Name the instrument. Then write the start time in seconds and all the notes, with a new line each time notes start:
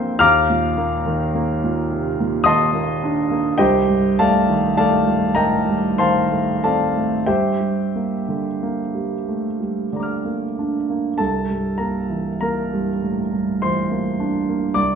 grand piano
Already playing: G2 D3 E3 F3 A#3 C4 G5 C6 E6 G6
0.19 D#2 F5 A#5 D6 F6
0.50 A#2
0.77 A#3
1.06 D#3
1.35 A#3
1.64 A#2
1.92 C3
2.20 A#2
2.44 D#3 D#5 A5 C6 D#6
2.74 A#3
3.04 D4
3.31 A#3
3.58 C2 G4 C5 D#5 G5
3.89 G2
4.19 A3 A4 D5 F5 A5
4.49 D#3
4.77 A3 A4 D5 F5 A5
5.08 G2
5.35 A2 A#4 D#5 G5 A#5
5.69 G2
5.98 D#3 C5 F5 A5 C6
6.31 A3
6.64 C4 A4 D5 F5 A5
6.97 A3
7.26 G2 G4 C5 E5 G5
7.60 G3
7.96 A#3
8.28 D3
8.63 A#3
8.95 G3
9.28 A3
9.61 G3
9.93 D3 D5 A#5
10.00 D6 F6
10.25 A#3
10.59 D4
10.90 A#3
11.18 C2 A4 A5
11.51 G2
11.78 A#3 A#4 A#5
12.09 E3
12.41 A#3 A#4 A#5
12.73 G2
13.02 A2
13.33 G2
13.62 E3 C5 C6
13.91 A#3
14.20 D4
14.49 A#3
14.74 C2 D5 D6